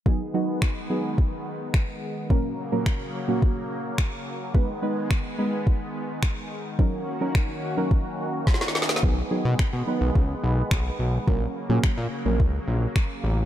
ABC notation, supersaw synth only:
X:1
M:4/4
L:1/8
Q:1/4=107
K:B
V:1 name="Supersaw synth" clef=bass
[D,G,B,]8 | [C,F,A,]8 | [D,G,B,]8 | [A,CF]8 |
[G,B,]8 | [C,F,A,]8 |]